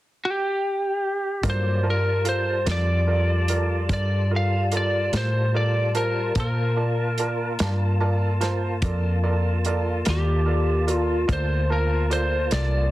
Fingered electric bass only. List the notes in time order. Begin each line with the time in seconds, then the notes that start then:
1.43 G2
2.67 F2
3.89 G2
5.13 A2
6.36 A#2
7.61 G2
8.82 F2
10.08 D#2
11.29 D2
12.52 C2